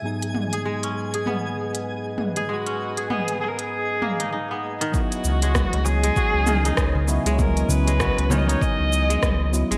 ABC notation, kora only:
X:1
M:4/4
L:1/16
Q:"Swing 16ths" 1/4=98
K:C#dor
V:1 name="Kora"
z3 G G, C2 G B, z6 G | G, C2 G B, z4 z A, D D B, z D, | z3 G,4 G, F2 D, D z3 G,- | G,3 G, F2 D, D z3 G,4 G, |]